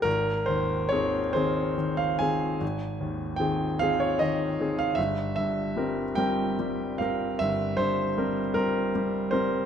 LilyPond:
<<
  \new Staff \with { instrumentName = "Grand piano" } { \time 12/8 \key aes \major \tempo 4. = 50 bes'8 c''8 des''8 c''8. f''16 aes''4. g''8 f''16 des''16 ees''8. f''16 | e''8 e''4 g''4 f''8 e''8 c''4 bes'4 c''8 | }
  \new Staff \with { instrumentName = "Grand piano" } { \clef bass \time 12/8 \key aes \major aes,,8 ees,8 <ees c' aes'>8 <ees c' aes'>8 ees8 <ees c' aes'>8 aes,,8 ees,8 <ees c' aes'>8 <ees c' aes'>8 ees8 <ees c' aes'>8 | g,,8 g,8 <g c' bes'>8 <g c' bes'>8 g8 <g c' bes'>8 g,,8 g,8 <g c' bes'>8 <g c'>8 g8 <g c' bes'>8 | }
>>